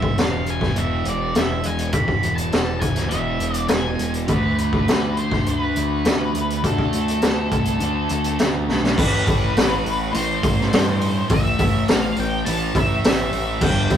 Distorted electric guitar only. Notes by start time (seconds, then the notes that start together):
Already playing: E2 B2 E3
0.74 E2 B2 E3
1.92 E2 B2 E3
3.10 E2 B2 E3
4.28 D3 A3 D4
5.46 D3 A3 D4
6.63 D3 A3 D4
7.79 D3 A3 D4
8.96 A2 E3 A3
10.13 A2 E3 A3
11.29 A2 E3 A3
12.46 A2 E3 A3
13.61 G2 D3 G3